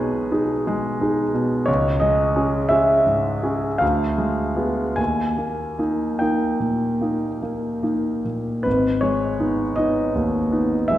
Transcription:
Already playing: B1 G#3 D#4 G#4 B4 C#5
0.00 B2
0.32 D#4 G#4
0.67 G#3
1.01 D#4 G#4
1.34 B2
1.66 C#2 C#5
2.00 G#3 D#5
2.36 C#4 G#4
2.69 C#4 G#4 E5
3.06 G#2
3.43 C#4 G#4
3.78 D2 F5
4.18 G#3
4.56 B3 G#4
4.96 D#2 G#5
5.38 A#3
5.79 A#3 D#4
6.19 A#3 D#4 G5
6.60 A#2
7.01 A#3 D#4
7.42 A#3
7.83 A#3 D#4
8.25 A#2
8.63 G#1 B4
9.01 G#3 C#5
9.40 B3 D#4
9.76 B3 D#4 D#5
10.15 D#2
10.52 B3 D#4
10.88 G#3 E5

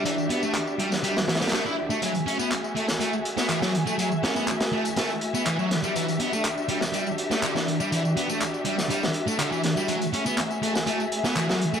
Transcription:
Already playing: D4 F#4 G4 E5
0.05 E3, closed hi-hat, tambourine
0.18 tambourine
0.30 B3, closed hi-hat
0.42 A3, tambourine
0.55 clap, closed hi-hat, tambourine
0.67 tambourine
0.79 G3, closed hi-hat
0.92 snare, tambourine
1.03 G3, closed hi-hat, tambourine
1.16 snare, tambourine
1.28 E3, snare, closed hi-hat
1.35 snare, closed hi-hat
1.41 G3, snare, closed hi-hat, tambourine
1.47 snare, closed hi-hat
1.53 A3, snare, clap, closed hi-hat, tambourine
1.65 E4, tambourine
1.90 A3, tambourine
2.02 F#3 A3 F#4 G#4 E5, closed hi-hat, tambourine
2.15 closed hi-hat, tambourine
2.27 C#4, closed hi-hat
2.39 B3, tambourine
2.52 clap, closed hi-hat, tambourine
2.64 tambourine
2.76 A3, closed hi-hat
2.88 snare, tambourine
3.00 A3, closed hi-hat, tambourine
3.13 tambourine
3.25 closed hi-hat
3.37 B3, snare, tambourine
3.50 E3, clap, closed hi-hat, tambourine
3.62 F#3, snare, tambourine
3.75 closed hi-hat
3.87 A3, tambourine
3.98 F#3, closed hi-hat, tambourine
4.12 tambourine
4.23 C#4, snare, closed hi-hat
4.36 B3, tambourine
4.48 clap, closed hi-hat, tambourine
4.60 snare, closed hi-hat, tambourine
4.72 A3
4.85 closed hi-hat, tambourine
4.96 A3, snare, closed hi-hat, tambourine
5.10 tambourine
5.21 closed hi-hat
5.34 B3, tambourine
5.46 E3, clap, closed hi-hat, tambourine
5.59 F#3, tambourine
5.71 D4 F#4 G4, snare, closed hi-hat
5.83 G3, tambourine
5.95 E3, closed hi-hat, tambourine
6.08 closed hi-hat, tambourine
6.20 B3, closed hi-hat
6.33 A3, tambourine
6.45 clap, closed hi-hat, tambourine
6.58 tambourine
6.69 G3, closed hi-hat
6.81 snare, tambourine
6.93 G3, closed hi-hat, tambourine
7.07 tambourine
7.18 closed hi-hat
7.31 A3, snare, tambourine
7.43 D3, clap, closed hi-hat, tambourine
7.56 E3, snare, tambourine
7.68 closed hi-hat
7.80 G3, tambourine
7.92 E3, closed hi-hat, tambourine
8.05 tambourine
8.17 B3, closed hi-hat
8.29 A3, tambourine
8.41 clap, closed hi-hat, tambourine
8.54 tambourine
8.65 G3, closed hi-hat
8.78 snare, tambourine
8.90 G3, closed hi-hat, tambourine
9.03 snare, tambourine
9.14 closed hi-hat
9.28 A3, tambourine
9.39 D3, clap, closed hi-hat, tambourine
9.52 E3, tambourine
9.63 snare, closed hi-hat
9.77 G3, tambourine
9.88 F#3 A3 G#4 E5, closed hi-hat, tambourine
10.02 closed hi-hat, tambourine
10.13 C#4, closed hi-hat
10.26 B3, tambourine
10.38 clap, closed hi-hat, tambourine
10.51 tambourine
10.62 A3, closed hi-hat
10.75 snare, tambourine
10.87 A3, closed hi-hat, tambourine
11.00 tambourine
11.12 closed hi-hat
11.24 B3, snare, tambourine
11.36 E3, clap, closed hi-hat, tambourine
11.49 F#3, snare, tambourine
11.61 closed hi-hat
11.74 A3, tambourine

